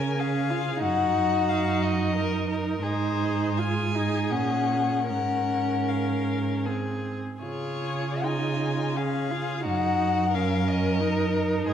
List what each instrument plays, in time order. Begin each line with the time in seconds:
Already playing: cello C#3, viola C#4, violin A#4 G#5
0.18 viola C#4, violin G#4 F5
0.50 viola F4
0.82 cello F#2, viola D#4, violin F#4 F#5
1.49 violin F5
1.83 violin D#5
2.15 violin A#4
2.50 violin A#4
2.82 cello G#2, viola D#4, violin G#4 C5
3.55 viola F4, violin G#4 G#5
3.95 viola D#4
4.30 cello A#2, viola C#4, violin F#5
5.09 cello G#2, viola C#4, violin A#4 F#5
5.89 violin F5
6.66 viola C4, violin G#4
7.42 cello C#3, viola F4, violin G#4 C#5
8.23 viola D#4, violin F4 G#5
8.96 viola C#4, violin G#4 F5
9.31 viola F4
9.65 cello F#2, viola D#4, violin F#4 F#5
10.33 viola C#4, violin A#4 F5
10.68 violin D#5
11.01 viola D#4
11.33 viola D#4
11.67 cello G#2, violin G#4 C5